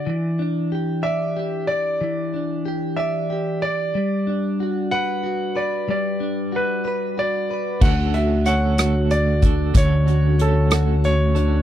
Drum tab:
CC |------|------|------|------|
HH |------|------|------|------|
SD |------|------|------|------|
BD |------|------|------|------|

CC |x-----|------|
HH |-xxxxx|xxxxxx|
SD |---r--|---r--|
BD |o----o|o-----|